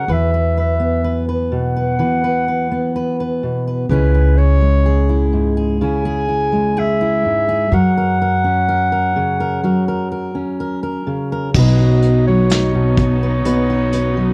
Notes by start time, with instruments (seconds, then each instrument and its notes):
Already playing: steel-string acoustic guitar F#3, clarinet F#5
0.08 upright bass E2, steel-string acoustic guitar E3 B4
0.12 clarinet E5
0.34 steel-string acoustic guitar B4
0.57 steel-string acoustic guitar B4, clarinet E5
0.80 steel-string acoustic guitar B3
1.04 steel-string acoustic guitar B4
1.29 steel-string acoustic guitar B4
1.52 steel-string acoustic guitar B2, clarinet F#5
1.76 steel-string acoustic guitar B4
1.99 steel-string acoustic guitar E3 B4
2.24 steel-string acoustic guitar B4
2.48 steel-string acoustic guitar B4
2.71 steel-string acoustic guitar B3
2.96 steel-string acoustic guitar B4
3.20 steel-string acoustic guitar B4
3.43 steel-string acoustic guitar B2
3.67 steel-string acoustic guitar B4
3.89 upright bass C#2, steel-string acoustic guitar C#3 G#3 C#4 E4 G#4, clarinet B4
4.15 steel-string acoustic guitar G#4
4.38 steel-string acoustic guitar E4, clarinet C#5
4.61 steel-string acoustic guitar G#3
4.86 steel-string acoustic guitar G#4
5.09 steel-string acoustic guitar E4
5.33 steel-string acoustic guitar G#2
5.57 steel-string acoustic guitar G#4
5.81 steel-string acoustic guitar C#3 E4, clarinet G#5
6.05 steel-string acoustic guitar G#4
6.28 steel-string acoustic guitar E4
6.52 steel-string acoustic guitar G#3
6.77 steel-string acoustic guitar G#4, clarinet E5
7.01 steel-string acoustic guitar E4
7.25 steel-string acoustic guitar G#2
7.49 steel-string acoustic guitar G#4
7.72 upright bass F#2, steel-string acoustic guitar F#3 A#4, clarinet F#5
7.97 steel-string acoustic guitar A#4
8.22 steel-string acoustic guitar A#4
8.44 steel-string acoustic guitar C#4
8.69 steel-string acoustic guitar A#4
8.92 steel-string acoustic guitar A#4
9.16 steel-string acoustic guitar C#3
9.40 steel-string acoustic guitar A#4
9.63 steel-string acoustic guitar F#3 A#4
9.88 steel-string acoustic guitar A#4
10.12 steel-string acoustic guitar A#4
10.35 steel-string acoustic guitar C#4
10.60 steel-string acoustic guitar A#4
10.83 steel-string acoustic guitar A#4
11.07 steel-string acoustic guitar C#3
11.32 steel-string acoustic guitar A#4
11.54 upright bass B1, steel-string acoustic guitar B2 F#3 D#4 F#4, string section B3 C#4 D#4, clarinet D#5, kick, crash
11.59 steel-string acoustic guitar B4
11.80 steel-string acoustic guitar F#4
12.02 steel-string acoustic guitar B4, closed hi-hat
12.27 steel-string acoustic guitar F#3, clarinet C#5
12.50 steel-string acoustic guitar D#4, snare, closed hi-hat
12.75 steel-string acoustic guitar B2
12.97 steel-string acoustic guitar F#4, clarinet C#5, kick, closed hi-hat
13.23 steel-string acoustic guitar B4
13.45 steel-string acoustic guitar B2 B4, closed hi-hat
13.70 steel-string acoustic guitar F#4
13.92 steel-string acoustic guitar B4, closed hi-hat
14.17 steel-string acoustic guitar F#3